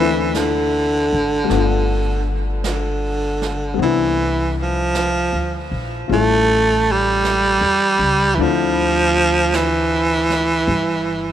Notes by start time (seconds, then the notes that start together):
Already playing: D2 E3 A3
0.00 C4 D4 E4
0.34 D3, brush sweep, snare, hi-hat pedal
1.13 G#1
1.44 G3 A3
1.49 G1 B3 D4, brush sweep, snare
1.55 F4
2.64 brush sweep, snare, hi-hat pedal
2.69 D3
3.42 snare
3.74 G3 B3
3.79 C2 E3 C4 D4, brush sweep
3.84 E4
4.62 F3
4.95 brush sweep, snare, hi-hat pedal
5.33 D2
5.71 A#1
6.08 A1 G3 A3 C#4 F4, brush sweep
6.13 A3 E4
6.92 G3
7.24 brush sweep, snare, hi-hat pedal
7.61 E2
7.99 C#2
8.35 D2 E3
8.39 D3 F3 A3 C4 D4 E4, brush sweep
9.53 E3, brush sweep, snare, hi-hat pedal
10.30 snare
10.68 G1, brush sweep